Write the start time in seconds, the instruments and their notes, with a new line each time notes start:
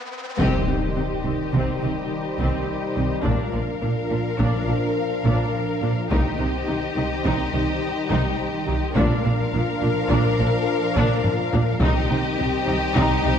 Already playing: riser
0.38 double bass section C2, cello section C3, synth arpeggio sound C3, analog synth pad D#3 D#4 G4 C5, french horn section G3 D#4, viola section C4, violin section G4 D#5, taiko, impact
0.68 double bass section C2, cello section C3, synth arpeggio sound C4, viola section C4
0.96 double bass section C2, cello section C3, synth arpeggio sound C4, viola section C4
1.25 double bass section C2, cello section C3, synth arpeggio sound G3, viola section C4
1.53 double bass section C2, synth arpeggio sound C3, cello section C3, viola section C4, taiko
1.82 double bass section C2, cello section C3, synth arpeggio sound G3, viola section C4
2.39 double bass section C2, cello section C3, synth arpeggio sound C3, viola section C4, taiko
2.96 double bass section C2, cello section C3, synth arpeggio sound G3, viola section C4
3.24 double bass section A#1, cello section A#2, french horn section F3 D4, analog synth pad F3 D4 F4 A#4, synth arpeggio sound A#3, viola section D4, violin section A#4 F5, taiko
3.53 double bass section A#1, cello section A#2, viola section D4, synth arpeggio sound A#4
3.81 double bass section A#1, cello section A#2, viola section D4, synth arpeggio sound A#4
4.10 double bass section A#1, cello section A#2, viola section D4, synth arpeggio sound F4
4.39 double bass section A#1, cello section A#2, synth arpeggio sound A#3, viola section D4, taiko
4.67 double bass section A#1, cello section A#2, viola section D4, synth arpeggio sound F4
5.24 double bass section A#1, cello section A#2, synth arpeggio sound A#3, viola section D4, taiko
5.82 double bass section A#1, cello section A#2, viola section D4, synth arpeggio sound F4
6.10 double bass section C2, synth arpeggio sound C3, cello section C3, analog synth pad D#3 D#4 G4 C5, french horn section G3 D#4, viola section D#4, violin section G4 D#5, taiko
6.39 double bass section C2, cello section C3, synth arpeggio sound C4, viola section D#4
6.67 double bass section C2, cello section C3, synth arpeggio sound C4, viola section D#4
6.96 double bass section C2, cello section C3, synth arpeggio sound G3, viola section D#4
7.24 double bass section C2, cello section C3, synth arpeggio sound C3, viola section D#4, taiko
7.53 double bass section C2, cello section C3, synth arpeggio sound G3, viola section D#4
8.10 double bass section C2, cello section C3, synth arpeggio sound C3, viola section D#4, taiko
8.67 double bass section C2, cello section C3, synth arpeggio sound G3, viola section D#4
8.96 double bass section A#1, cello section A#2, analog synth pad F3 D4 F4 A#4, french horn section F3 D4, synth arpeggio sound A#3, viola section D4, violin section A#4 F5, taiko
9.24 double bass section A#1, cello section A#2, viola section D4, synth arpeggio sound A#4
9.53 double bass section A#1, cello section A#2, viola section D4, synth arpeggio sound A#4
9.82 double bass section A#1, cello section A#2, viola section D4, synth arpeggio sound F4
10.10 double bass section A#1, cello section A#2, synth arpeggio sound A#3, viola section D4, taiko
10.39 double bass section A#1, cello section A#2, viola section D4, synth arpeggio sound F4
10.96 double bass section A#1, cello section A#2, synth arpeggio sound A#3, viola section D4, taiko mid
11.24 taiko low-mid
11.53 double bass section A#1, cello section A#2, viola section D4, synth arpeggio sound F4, taiko low
11.80 double bass section C2, synth arpeggio sound C3, cello section C3, analog synth pad D#3 D#4 G4 C5, french horn section G3 D#4, viola section D#4, violin section G4 D#5, taiko
12.10 double bass section C2, cello section C3, synth arpeggio sound C4, viola section D#4
12.38 double bass section C2, cello section C3, synth arpeggio sound C4, viola section D#4
12.68 double bass section C2, cello section C3, synth arpeggio sound G3, viola section D#4
12.96 double bass section C2, synth arpeggio sound C3, cello section C3, viola section D#4, taiko
13.23 double bass section C2, cello section C3, synth arpeggio sound G3, viola section D#4